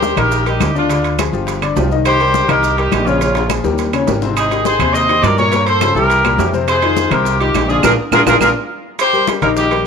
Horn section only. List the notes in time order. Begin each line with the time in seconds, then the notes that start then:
Already playing: G4 C5
0.17 G4 A#4
0.46 D#4 G4
0.76 D4 F4
2.06 G4 C5
2.49 G4 A#4
2.78 D#4 G4
3.07 C#4 F4
4.37 D#4 G#4
4.65 G#4 C5
4.94 C5 D#5
5.23 A#4 D5
5.38 A#4 C#5
5.67 A4 C5
5.96 G4 A#4
6.69 G#4 C5
7.11 G4 A#4
7.40 D#4 G4
7.70 F4 G#4
7.84 F4 G#4 A#4
8.13 F4 G#4 A#4
8.28 F4 G#4 A#4
8.42 F4 G#4 A#4
9.00 G4 C5
9.43 G4 A#4
9.58 D#4 G4